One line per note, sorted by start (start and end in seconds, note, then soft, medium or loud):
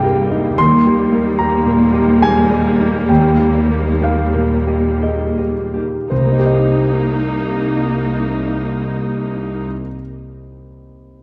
0.00 0.54 C2 soft
0.00 0.54 C2 medium
0.00 0.60 G2 soft
0.00 0.61 C3 soft
0.00 0.53 G3 medium
0.00 2.38 G3 soft
0.00 0.53 A#3 soft
0.00 0.59 A#3 soft
0.00 0.85 A#3 soft
0.00 0.30 D#4 soft
0.00 0.04 G4 soft
0.00 0.59 G#4 soft
0.00 1.93 D#5 soft
0.00 0.59 F5 medium
0.00 0.60 G5 medium
0.04 0.47 G4 soft
0.04 1.66 A#4 soft
0.31 0.58 D#4 soft
0.31 1.11 D#4 soft
0.57 5.84 D#2 medium
0.57 3.06 D#2 medium
0.57 3.09 D#3 medium
0.57 5.79 G3 medium
0.57 5.79 A#3 medium
0.57 1.35 C6 medium
0.86 3.39 A#3 soft
0.86 1.28 G4 soft
1.12 1.55 A#3 soft
1.12 3.70 D#4 soft
1.39 1.83 G4 soft
1.39 2.18 A#5 medium
1.66 2.10 A#2 soft
1.66 4.33 A#4 soft
1.93 2.38 G4 soft
1.93 2.50 D#5 soft
2.21 2.50 G#4 soft
2.21 3.05 G#5 medium
2.21 6.12 A#5 soft
2.50 2.97 G3 soft
2.50 4.67 D#5 soft
2.79 3.27 D#4 soft
2.79 4.01 G4 soft
3.09 6.06 D#2 soft
3.09 6.15 D#3 soft
3.09 3.98 G5 medium
3.38 6.16 A#3 soft
3.38 3.88 G4 soft
3.69 4.20 A#3 soft
3.69 6.30 D#4 soft
4.02 4.54 G4 soft
4.02 5.73 G4 soft
4.02 4.99 F5 soft
4.34 4.88 A#2 soft
4.34 8.24 A#4 soft
4.67 5.23 G4 soft
4.67 5.37 D#5 soft
5.02 5.38 G#4 soft
5.02 5.53 D#5 soft
5.02 8.92 G5 soft
5.38 5.96 G4 soft
5.38 6.44 D#5 soft
5.74 6.11 D#4 soft
5.74 6.37 G4 soft
6.10 9.65 C2 soft
6.10 9.66 C2 soft
6.10 10.01 C3 soft
6.10 9.64 A#3 soft
6.10 9.64 D#4 soft
6.10 9.64 C5 soft
6.18 9.73 C3 soft
6.18 9.72 A#3 soft
6.25 9.80 A#3 soft
6.25 9.79 C4 soft
6.32 9.86 D#4 soft
6.32 9.87 D#4 soft
6.39 9.93 G4 soft
6.39 9.94 G4 soft
6.46 10.00 D#5 soft